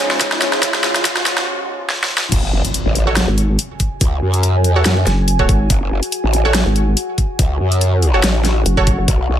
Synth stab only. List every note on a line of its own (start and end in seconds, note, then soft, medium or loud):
3.07 3.18 F#4 loud
3.07 3.18 A4 medium
3.07 3.18 C#5 loud
4.76 4.87 F#4 medium
4.76 4.87 A4 medium
4.76 4.87 C#5 medium
5.39 5.58 F#4 medium
5.39 5.58 A4 medium
5.39 5.58 C#5 medium
6.45 6.56 F#4 medium
6.45 6.56 A4 medium
6.45 6.56 C#5 loud
8.14 8.25 F#4 medium
8.14 8.25 A4 medium
8.14 8.25 C#5 medium
8.77 8.96 F#4 medium
8.77 8.96 A4 medium
8.77 8.96 C#5 loud